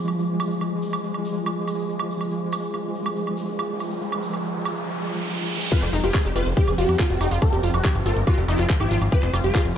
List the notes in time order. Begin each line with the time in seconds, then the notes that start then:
Already playing: F3 G#3
0.08 high woodblock, shaker
0.18 shaker
0.40 high woodblock, shaker
0.51 shaker
0.61 high woodblock, shaker
0.82 shaker
0.93 high woodblock, shaker
1.04 shaker
1.14 high woodblock
1.25 shaker
1.36 shaker
1.46 high woodblock, shaker
1.68 high woodblock, shaker
1.79 shaker
1.89 shaker
1.99 high woodblock
2.11 shaker
2.21 high woodblock, shaker
2.31 riser, shaker
2.52 high woodblock, shaker
2.64 shaker
2.74 high woodblock, shaker
2.95 shaker
3.06 high woodblock, shaker
3.16 shaker
3.27 high woodblock
3.37 shaker
3.49 shaker
3.59 high woodblock, shaker
3.79 high woodblock, shaker
3.90 shaker
4.02 shaker
4.12 high woodblock
4.23 shaker
4.34 high woodblock, shaker
4.43 shaker
4.65 high woodblock, shaker
4.76 shaker
5.51 closed hi-hat
5.56 closed hi-hat
5.61 closed hi-hat
5.66 closed hi-hat
5.72 F3 C4 F4 C5, kick, closed hi-hat, crash, shaker
5.82 F1, clap, closed hi-hat, high woodblock
5.93 F1 D#4, open hi-hat, shaker
6.04 F1 F4 G#4, closed hi-hat, shaker
6.14 kick, clap, closed hi-hat, high woodblock, shaker
6.25 F1 G4, closed hi-hat
6.36 F1 F4 C5, open hi-hat, high woodblock, shaker
6.46 F1, closed hi-hat, shaker
6.57 G4 G#4, kick, closed hi-hat, shaker
6.68 F1, closed hi-hat, high woodblock
6.78 F1 F4 G4, open hi-hat, shaker
6.89 F2, closed hi-hat, high woodblock, shaker
6.99 F4, kick, clap, closed hi-hat, shaker
7.10 F1 G4, closed hi-hat
7.21 F1 D#4, open hi-hat, high woodblock, shaker
7.31 F1 F4, open hi-hat, shaker
7.42 A#4, kick, closed hi-hat, high woodblock, shaker
7.53 F1 G4, closed hi-hat
7.63 F1 F4, open hi-hat, shaker
7.74 F1 G4, closed hi-hat, high woodblock, shaker
7.84 G4, kick, clap, closed hi-hat, shaker
7.95 G1, closed hi-hat, high woodblock
8.05 G1 F4 A#4, open hi-hat, shaker
8.16 G1, closed hi-hat, shaker
8.27 F4 G4, kick, closed hi-hat, high woodblock, shaker
8.38 F1, open hi-hat
8.48 F1 D#4 F4, open hi-hat, high woodblock, shaker
8.59 F1 F4, clap, closed hi-hat, shaker
8.70 kick, clap, closed hi-hat, shaker
8.80 G#1 F4 G4, closed hi-hat, high woodblock
8.91 G#1 F4, open hi-hat, shaker
9.01 G#1, closed hi-hat, high woodblock, shaker
9.12 G3 G4 C5, kick, closed hi-hat, shaker
9.23 F1, clap, closed hi-hat
9.34 F1 F4, open hi-hat, high woodblock, shaker
9.44 F1 G#4, closed hi-hat, shaker
9.55 F4, kick, clap, closed hi-hat, high woodblock, shaker
9.65 F1, closed hi-hat